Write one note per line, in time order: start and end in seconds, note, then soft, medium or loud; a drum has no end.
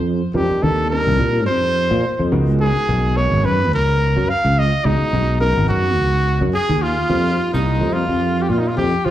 0.00 0.20 F2 medium
0.34 0.49 F2 medium
0.34 0.60 G3 medium
0.34 0.60 C4 medium
0.34 0.61 D4 medium
0.34 0.60 D#4 medium
0.34 0.64 G4 medium
0.34 0.60 A#4 medium
0.51 muted fretless electric bass stroke soft
0.62 1.04 D#2 medium
0.62 0.89 G3 medium
0.62 0.89 C4 medium
0.62 0.89 D4 medium
0.62 0.89 D#4 medium
0.62 0.90 A4 medium
0.62 0.89 A#4 medium
0.90 1.99 G3 medium
0.90 1.99 C4 medium
0.90 1.99 D4 medium
0.90 1.99 D#4 medium
0.90 1.43 A#4 medium
0.90 1.99 A#4 medium
1.07 1.19 C2 medium
1.19 1.48 A#2 medium
1.46 1.89 F2 loud
1.46 2.27 C5 medium
1.91 2.03 A#2 medium
2.19 2.31 F2 medium
2.32 2.73 C#2 medium
2.32 2.86 G#3 medium
2.32 2.86 B3 medium
2.32 2.86 D#4 medium
2.32 2.86 F#4 medium
2.32 2.86 A#4 medium
2.61 3.18 G#4 medium
2.76 muted fretless electric bass stroke soft
2.88 3.30 B1 medium
2.88 3.15 G#3 medium
2.88 3.15 B3 medium
2.88 3.15 D#4 medium
2.88 3.15 F#4 medium
2.88 3.15 A#4 medium
3.16 4.23 G#3 medium
3.16 4.23 B3 medium
3.16 4.24 D#4 medium
3.16 4.24 F#4 medium
3.16 4.24 A#4 medium
3.16 3.47 C#5 medium
3.31 3.43 G#1 medium
3.44 3.72 F#2 medium
3.44 3.73 B4 medium
3.72 4.13 C#2 loud
3.72 4.31 A#4 loud
4.17 4.28 F#2 medium
4.29 4.60 F5 loud
4.44 4.71 C#2 medium
4.59 4.87 D#5 loud
4.85 5.00 C#2 medium
4.85 5.11 G#3 medium
4.85 5.11 B3 medium
4.85 5.12 D#4 medium
4.85 5.40 D#4 medium
4.85 5.12 F#4 medium
4.85 5.11 G#4 medium
5.01 muted fretless electric bass stroke soft
5.13 5.54 B1 medium
5.13 5.40 G#3 medium
5.13 5.39 B3 medium
5.13 5.40 D#4 medium
5.13 5.40 F#4 medium
5.40 6.48 G#3 medium
5.40 6.48 B3 medium
5.40 6.48 D#4 medium
5.40 6.48 F#4 medium
5.40 5.67 A#4 medium
5.40 6.48 A#4 medium
5.57 5.69 G#1 medium
5.68 5.97 F#2 medium
5.68 6.49 F#4 medium
5.97 6.39 C#2 medium
6.41 6.53 F#2 medium
6.54 6.84 G#4 loud
6.54 6.85 G#4 medium
6.69 6.96 D#2 medium
6.82 7.53 F4 loud
6.82 7.53 F4 medium
7.09 7.36 F2 medium
7.09 7.51 G3 medium
7.09 7.50 A#3 medium
7.09 7.50 C4 medium
7.09 7.51 D#4 medium
7.09 7.50 F4 medium
7.53 7.80 C2 medium
7.53 7.79 G3 medium
7.53 7.80 A#3 medium
7.53 7.80 C4 medium
7.53 7.94 D#4 medium
7.53 7.80 D#4 medium
7.53 7.97 D#4 medium
7.53 7.80 F4 medium
7.81 8.08 F2 medium
7.81 8.87 G3 medium
7.81 8.87 A#3 medium
7.81 8.87 C4 medium
7.81 8.87 D#4 medium
7.81 8.87 F4 medium
7.93 8.43 F4 medium
7.93 8.45 F4 medium
8.08 8.47 F2 medium
8.42 8.50 G4 medium
8.42 8.54 G4 medium
8.49 8.76 A#2 medium
8.49 8.60 F4 medium
8.49 8.63 F4 medium
8.58 8.69 D#4 medium
8.58 8.72 D#4 medium
8.68 8.76 F4 medium
8.68 8.78 F4 medium
8.77 8.92 F2 medium
8.77 9.07 G4 medium
8.77 9.10 G4 medium
9.05 9.11 F3 medium
9.05 9.11 F4 medium